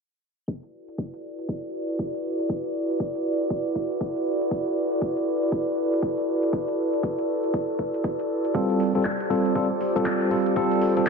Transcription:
0.48 analog synth pad E4 F#4 A4 B4 D5, kick, closed hi-hat
0.63 closed hi-hat
0.88 closed hi-hat
0.98 kick, closed hi-hat
1.14 closed hi-hat
1.39 closed hi-hat
1.49 kick, closed hi-hat
1.89 closed hi-hat
1.99 kick, closed hi-hat
2.14 closed hi-hat
2.40 closed hi-hat
2.50 kick, closed hi-hat
2.65 closed hi-hat
2.90 closed hi-hat
3.00 kick, closed hi-hat
3.15 closed hi-hat
3.40 closed hi-hat
3.50 kick, closed hi-hat
3.76 kick
3.91 closed hi-hat
4.01 kick, closed hi-hat
4.16 closed hi-hat
4.41 closed hi-hat
4.51 kick, closed hi-hat
4.66 closed hi-hat
4.92 closed hi-hat
5.02 kick, closed hi-hat
5.17 closed hi-hat
5.42 closed hi-hat
5.52 kick, closed hi-hat
5.93 closed hi-hat
6.02 kick, closed hi-hat
6.18 closed hi-hat
6.43 closed hi-hat
6.53 kick, closed hi-hat
6.68 closed hi-hat
6.93 closed hi-hat
7.03 kick, closed hi-hat
7.19 closed hi-hat
7.44 closed hi-hat
7.54 kick, closed hi-hat
7.79 kick
7.94 closed hi-hat
8.04 kick, closed hi-hat
8.19 closed hi-hat
8.45 closed hi-hat
8.55 tine electric piano G3 C4 F4 A4, analog synth pad F4 G4 C5 D5, kick, closed hi-hat
8.70 closed hi-hat
8.80 open hi-hat
8.95 tine electric piano G3 C4 F4 A4, closed hi-hat
9.05 kick, clap, closed hi-hat
9.20 closed hi-hat
9.30 tine electric piano G3 C4 F4 A4, open hi-hat
9.46 closed hi-hat
9.55 tine electric piano G3 C4 F4 A4, kick, closed hi-hat
9.81 open hi-hat
9.96 tine electric piano G3 C4 F4 A4, closed hi-hat
10.06 kick, clap, closed hi-hat
10.21 closed hi-hat
10.31 tine electric piano G3 C4 F4 A4, open hi-hat
10.46 closed hi-hat
10.56 tine electric piano G3 C4 F4 A4, kick, closed hi-hat
10.72 closed hi-hat
10.82 open hi-hat
10.97 tine electric piano G3 C4 F4 A4, closed hi-hat

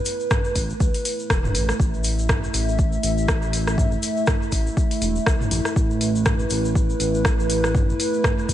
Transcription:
Already playing: analog synth pad A3 E4 B4
0.05 open hi-hat, shaker
0.20 shaker
0.31 kick, cross-stick, mid tom, shaker
0.44 shaker
0.56 analog synth bass A1, kick, open hi-hat, shaker
0.70 shaker
0.80 analog synth bass D2, kick, shaker
0.94 open hi-hat, shaker
1.05 open hi-hat, shaker
1.19 shaker
1.30 analog synth bass E1, kick, cross-stick, shaker
1.44 mid tom, shaker
1.55 analog synth bass A1, open hi-hat, shaker
1.69 cross-stick, shaker
1.80 analog synth bass A1, analog synth pad E5, kick, shaker
1.94 shaker
2.04 open hi-hat, shaker
2.19 shaker
2.29 kick, cross-stick, mid tom, shaker
2.44 shaker
2.54 analog synth bass A1, open hi-hat, shaker
2.69 shaker
2.79 kick, shaker
2.92 shaker
3.03 analog synth bass A1, open hi-hat, shaker
3.18 shaker
3.28 kick, cross-stick, shaker
3.42 shaker
3.53 open hi-hat, shaker
3.67 cross-stick, shaker
3.78 kick, mid tom, shaker
3.92 shaker
4.03 open hi-hat, shaker
4.17 shaker
4.27 kick, cross-stick, mid tom, shaker
4.42 shaker
4.52 analog synth bass A1, kick, open hi-hat, shaker
4.67 shaker
4.77 kick, shaker
4.91 open hi-hat, shaker
5.02 analog synth bass E1, open hi-hat, shaker
5.16 shaker
5.26 analog synth bass C2, kick, cross-stick, shaker
5.41 mid tom, shaker
5.51 analog synth bass A1, open hi-hat, shaker
5.65 cross-stick, shaker
5.76 analog synth bass A1, analog synth pad B4, kick, shaker
5.91 shaker
6.01 open hi-hat, shaker
6.16 shaker
6.25 kick, cross-stick, mid tom, shaker
6.39 shaker
6.50 analog synth bass A1, open hi-hat, shaker
6.65 shaker
6.75 kick, shaker
6.90 shaker
7.00 analog synth bass A1, open hi-hat, shaker
7.15 shaker
7.25 kick, cross-stick, shaker
7.40 shaker
7.50 open hi-hat, shaker
7.64 cross-stick, shaker
7.75 kick, mid tom, shaker
7.90 shaker
8.00 open hi-hat, shaker
8.14 shaker
8.24 kick, cross-stick, mid tom, shaker
8.39 shaker
8.49 analog synth bass A1, kick, open hi-hat, shaker

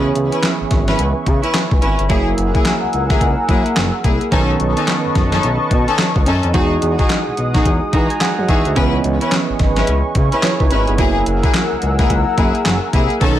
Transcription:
Already playing: analog synth bass C#2, synth keys E3 B3 C#4 G#4, analog synth pad B4 E5 G#5 C#6
0.15 analog synth bass C#2, closed hi-hat
0.32 string section C#4 E4 B4, closed hi-hat
0.43 snare, clap, closed hi-hat
0.61 analog synth bass G#1
0.71 analog synth bass G#1, kick, snare, closed hi-hat
0.88 string section C#4 E4 B4, snare, closed hi-hat
0.99 analog synth bass C#2, closed hi-hat
1.26 analog synth bass C#3, kick, closed hi-hat
1.43 string section C#4 E4 B4, closed hi-hat
1.54 snare, clap, closed hi-hat
1.71 analog synth bass C#2, kick
1.82 analog synth bass G#1, string section C#4 E4 B4, closed hi-hat
1.99 analog synth bass G1, closed hi-hat
2.09 analog synth bass F#1, synth keys F#3 A#3 E4 G#4, string section A#3 E4 G#4, analog synth pad A#4 F#5 E6, kick, closed hi-hat
2.38 analog synth bass F#1, closed hi-hat
2.54 string section A#3 E4 G#4, kick, closed hi-hat
2.65 snare, clap, closed hi-hat
2.83 analog synth bass C#2
2.93 analog synth bass C#2, closed hi-hat
3.10 string section A#3 E4 G#4, kick, snare, closed hi-hat
3.21 analog synth bass C#2, kick, closed hi-hat
3.48 analog synth bass F#2, string section A#3 E4 G#4, kick, closed hi-hat
3.66 closed hi-hat
3.76 analog synth bass F#1, snare, clap, closed hi-hat
4.04 analog synth bass C2, string section A#3 E4 G#4, kick, closed hi-hat
4.21 closed hi-hat
4.31 analog synth bass B1, synth keys D#3 B3 C#4 A4, string section C#4 D#4 A4, analog synth pad B4 D#5 A5 C#6, kick, closed hi-hat
4.60 analog synth bass B1, closed hi-hat
4.77 string section C#4 D#4 A4, closed hi-hat
4.88 snare, clap, closed hi-hat
5.05 analog synth bass F#1
5.15 analog synth bass F#1, kick, snare, closed hi-hat
5.32 string section C#4 D#4 A4, snare, closed hi-hat
5.43 analog synth bass B1, closed hi-hat
5.71 analog synth bass B2, kick, closed hi-hat
5.88 string section C#4 D#4 A4, closed hi-hat
5.98 snare, clap, closed hi-hat
6.16 analog synth bass C#2, kick
6.26 analog synth bass F#2, string section C#4 D#4 A4, closed hi-hat
6.43 analog synth bass F2, closed hi-hat
6.53 analog synth bass E2, synth keys E3 G#3 D#4 F#4, string section D#4 F#4 G#4, analog synth pad G#4 D#5 F#5 D#6, kick, closed hi-hat
6.82 analog synth bass E2, closed hi-hat
6.99 string section D#4 F#4 G#4, kick, closed hi-hat
7.10 snare, clap, closed hi-hat
7.27 analog synth bass B1
7.37 analog synth bass B1, closed hi-hat
7.54 string section D#4 F#4 G#4, kick, snare, closed hi-hat
7.65 analog synth bass E2, kick, closed hi-hat
7.93 analog synth bass E3, string section D#4 F#4 G#4, synth keys A#5, kick, closed hi-hat
8.10 synth keys G#5, closed hi-hat
8.21 synth keys F#5, snare, clap, closed hi-hat
8.38 analog synth bass F#2
8.48 analog synth bass E2, string section D#4 F#4 G#4, synth keys E5, kick, closed hi-hat
8.65 analog synth bass D2, closed hi-hat
8.76 analog synth bass C#2, synth keys E3 B3 C#4 G#4, string section C#4 E4 B4, analog synth pad B4 G#5 C#6, kick, closed hi-hat
9.04 analog synth bass C#2, closed hi-hat
9.21 string section C#4 E4 B4, closed hi-hat
9.32 snare, clap, closed hi-hat
9.50 analog synth bass G#1
9.59 analog synth bass G#1, kick, snare, closed hi-hat
9.76 string section C#4 E4 B4, snare, closed hi-hat
9.87 analog synth bass C#2, closed hi-hat
10.15 analog synth bass C#3, kick, closed hi-hat
10.32 string section C#4 E4 B4, closed hi-hat
10.43 synth keys E4 C#5, snare, clap, closed hi-hat
10.60 analog synth bass C#2, synth keys D#4 B4, kick
10.71 analog synth bass G#1, string section C#4 E4 B4, closed hi-hat
10.87 analog synth bass G1, synth keys B3 G#4, closed hi-hat
10.98 analog synth bass F#1, synth keys F#3 A#3 E4 F#4, string section A#3 E4 G#4, analog synth pad A#4 F#5 E6, kick, closed hi-hat
11.07 synth keys G#4
11.26 analog synth bass F#1, closed hi-hat
11.43 string section A#3 E4 G#4, kick, closed hi-hat
11.54 snare, clap, closed hi-hat
11.72 analog synth bass C#2
11.82 analog synth bass C#2, closed hi-hat
11.99 string section A#3 E4 G#4, kick, snare, closed hi-hat
12.10 analog synth bass C#2, kick, closed hi-hat
12.37 analog synth bass F#2, string section A#3 E4 G#4, kick, closed hi-hat
12.55 closed hi-hat
12.65 analog synth bass F#1, snare, clap, closed hi-hat
12.93 analog synth bass C2, string section A#3 E4 G#4, kick, closed hi-hat
13.10 closed hi-hat
13.20 analog synth bass B1, synth keys D#3 B3 C#4 A4, string section C#4 D#4 A4, analog synth pad B4 D#5 A5 C#6, kick, closed hi-hat

